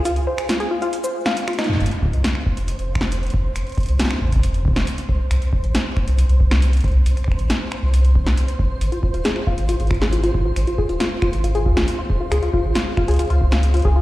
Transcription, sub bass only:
1.80 1.89 F1 loud
2.13 2.22 C2 medium
2.57 2.74 F1 medium
2.79 3.30 F1 medium
3.34 3.51 F1 medium
3.56 3.64 F1 loud
3.89 3.97 C2 medium
4.32 4.67 F1 medium
4.65 4.74 C2 medium
4.76 4.85 F1 medium
5.09 5.17 C2 medium
5.31 5.39 C2 loud
5.64 5.72 A1 medium
6.08 6.24 C2 medium
6.29 6.80 C2 medium
6.84 7.01 C2 medium
7.06 7.14 C2 loud
7.39 7.47 A1 medium
7.83 8.17 C2 medium
8.15 8.24 G1 medium
8.26 8.35 C2 medium
8.59 8.68 A1 medium
8.81 8.90 G#1 loud
9.14 9.23 D#1 medium
9.58 9.75 G#1 medium
9.80 10.30 G#1 medium
10.34 10.51 G#1 medium
10.56 10.65 G#1 loud
10.89 10.98 D#1 medium
11.33 11.67 G#1 medium
11.66 11.74 D#2 medium
11.77 11.85 G#1 medium
12.10 12.18 D#1 medium
12.32 12.40 C#2 loud
12.64 12.73 G#1 medium
13.08 13.25 C#2 medium
13.30 13.81 C#2 medium
13.85 14.02 C#2 medium

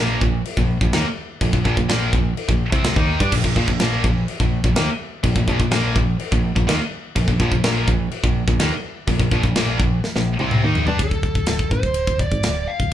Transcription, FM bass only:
0.00 0.20 A#1 medium
0.22 0.44 A#1 medium
0.57 0.79 A#1 medium
0.81 0.92 A#1 medium
0.94 1.04 D#2 loud
1.41 1.52 A#1 medium
1.53 1.64 A#1 medium
1.66 1.76 A#1 loud
1.77 1.88 A#1 medium
1.90 2.12 A#1 medium
2.13 2.35 A#1 medium
2.49 2.71 A#1 medium
2.72 2.95 C2 loud
2.96 3.19 D#2 loud
3.21 3.32 G2 loud
3.33 3.44 A#1 medium
3.44 3.56 A#1 medium
3.56 3.68 A#1 loud
3.68 3.79 A#1 medium
3.81 4.03 A#1 medium
4.04 4.27 A#1 medium
4.40 4.63 A#1 medium
4.64 4.75 A#1 medium
4.77 4.88 D#2 loud
5.24 5.35 A#1 medium
5.36 5.47 A#1 medium
5.48 5.59 A#1 loud
5.60 5.71 A#1 medium
5.73 5.95 A#1 loud
5.96 6.18 A#1 medium
6.32 6.55 A#1 medium
6.57 6.68 A#1 medium
6.69 6.80 D#2 medium
7.16 7.27 A#1 medium
7.28 7.39 A#1 medium
7.40 7.51 A#1 loud
7.52 7.63 A#1 medium
7.65 7.87 A#1 loud
7.88 8.10 A#1 medium
8.24 8.46 A#1 medium
8.48 8.59 A#1 medium
8.60 8.71 D#2 medium
9.08 9.19 A#1 medium
9.20 9.31 A#1 loud
9.32 9.43 A#1 loud
9.44 9.55 A#1 medium
9.56 9.78 A#1 medium
9.79 10.02 A#1 medium
10.16 10.38 A#1 medium
10.40 10.62 C2 medium
10.64 10.86 D#2 loud
10.88 10.99 G2 loud
10.99 11.11 D1 medium
11.11 11.23 D1 medium
11.23 11.35 D1 medium
11.36 11.47 D1 medium
11.49 11.59 D1 medium
11.59 11.71 D1 medium
11.71 11.83 A1 loud
11.83 12.06 D1 medium
12.08 12.19 D1 medium
12.20 12.31 D1 medium
12.32 12.43 G#1 medium
12.46 12.67 D1 medium
12.80 12.91 D1 medium

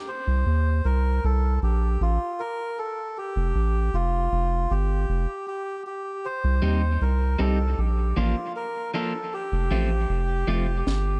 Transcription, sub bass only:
0.27 0.44 C2 medium
0.46 0.81 D#2 medium
0.85 1.20 C2 medium
1.24 1.59 C2 loud
1.62 1.97 A#1 loud
2.00 2.18 A1 loud
3.36 3.53 F1 medium
3.55 3.90 A1 medium
3.93 4.28 F1 medium
4.32 4.67 F1 medium
4.71 5.05 G1 loud
5.09 5.26 F1 medium
6.44 6.61 C2 medium
6.63 6.98 D#2 medium
7.01 7.36 C2 medium
7.40 7.75 C2 medium
7.78 8.13 A#1 medium
8.17 8.35 A1 loud
9.52 9.69 F1 loud
9.71 10.06 A1 medium
10.09 10.44 F1 medium
10.47 10.83 F1 loud
10.86 11.20 G1 loud

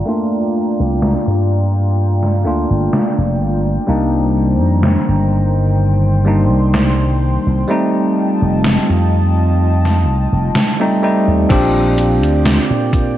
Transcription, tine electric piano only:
0.06 2.39 A3 medium
0.06 2.40 A#3 medium
0.06 2.40 D4 medium
0.06 2.41 F4 medium
2.44 3.82 A3 medium
2.44 3.83 A#3 medium
2.44 3.83 D4 medium
2.44 3.84 F4 medium
3.87 6.20 G3 medium
3.87 6.21 A#3 medium
3.87 6.21 D4 medium
3.87 6.22 D#4 medium
6.25 7.63 G3 medium
6.25 7.64 A#3 medium
6.25 7.64 D4 medium
6.25 7.65 D#4 medium
7.68 10.01 G3 medium
7.68 10.02 A3 medium
7.68 10.02 C4 medium
7.68 10.03 D#4 medium
10.80 10.97 G3 medium
10.80 10.97 A3 medium
10.80 10.97 C4 medium
10.80 10.98 D#4 medium
11.02 11.45 G3 medium
11.02 11.45 A3 medium
11.02 11.45 C4 medium
11.02 11.45 D#4 medium
11.49 13.18 C4 medium
11.49 13.18 D4 medium
11.49 13.18 F4 medium
11.49 13.18 G4 loud

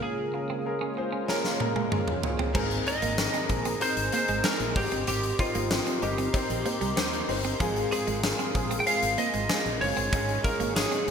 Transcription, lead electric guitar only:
0.03 0.93 G#4 medium
2.88 3.82 D#5 loud
3.82 4.13 C5 loud
4.14 4.46 C5 medium
4.45 4.76 A#4 medium
4.77 5.07 G4 medium
5.08 5.37 G4 medium
5.40 6.05 F4 medium
6.03 7.25 G4 medium
7.93 8.76 G#4 loud
8.80 8.86 G5 medium
8.87 9.19 F5 loud
9.18 9.81 D#5 loud
9.81 10.46 C#5 loud
10.44 10.74 A#4 medium
10.76 11.11 G#4 medium

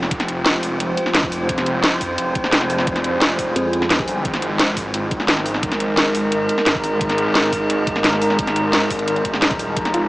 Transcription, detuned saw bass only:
0.00 0.79 F1 loud
0.80 0.96 F1 loud
1.15 1.48 F1 medium
1.49 1.99 F1 loud
2.01 2.17 F2 medium
2.18 3.55 F1 loud
4.08 4.24 G1 loud
4.25 4.75 G#1 loud
4.77 4.93 G#1 loud
4.94 6.30 G#1 loud
6.32 6.48 G#1 medium
6.66 6.99 G#1 medium
7.01 7.51 G#1 loud
7.52 7.68 G#1 medium
7.70 9.06 G#1 medium
9.08 9.58 G#1 loud
9.59 9.75 D#1 loud
9.77 10.08 F1 loud

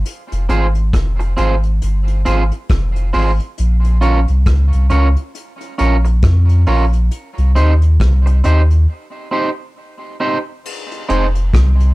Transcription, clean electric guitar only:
0.49 0.66 C4 medium
0.49 0.66 F4 medium
0.49 0.66 G#4 medium
0.49 0.66 C5 medium
1.19 muted clean electric guitar stroke soft
1.37 1.53 C4 medium
1.37 1.54 F4 medium
1.37 1.54 G#4 medium
1.37 1.54 C5 medium
2.25 2.42 C4 medium
2.25 2.42 F4 medium
2.25 2.42 G#4 medium
2.25 2.43 C5 medium
3.13 3.30 C4 medium
3.13 3.30 F4 medium
3.13 3.31 G#4 medium
3.13 3.31 C5 medium
4.01 4.18 C#4 medium
4.01 4.18 F4 medium
4.01 4.19 A#4 medium
4.01 4.19 C#5 medium
4.90 5.07 C#4 medium
4.90 5.07 F4 medium
4.90 5.07 A#4 medium
4.90 5.07 C#5 medium
5.78 5.95 C#4 medium
5.78 5.95 F4 medium
5.78 5.95 A#4 medium
5.78 5.96 C#5 medium
6.05 muted clean electric guitar stroke soft
6.67 6.84 C#4 medium
6.67 6.84 F4 medium
6.67 6.84 A#4 medium
6.67 6.84 C#5 medium
7.55 7.72 C4 medium
7.55 7.72 D#4 medium
7.55 7.73 G4 medium
7.55 7.73 C5 medium
8.26 muted clean electric guitar stroke soft
8.44 8.60 C4 medium
8.44 8.61 D#4 medium
8.44 8.61 G4 medium
8.44 8.61 C5 medium
9.31 9.48 C4 medium
9.31 9.49 D#4 medium
9.31 9.49 G4 medium
9.31 9.49 C5 medium
10.20 10.37 C4 medium
10.20 10.37 D#4 medium
10.20 10.37 G4 medium
10.20 10.37 C5 medium
11.09 11.25 C4 medium
11.09 11.25 D#4 loud
11.09 11.26 G#4 loud
11.09 11.26 C5 loud

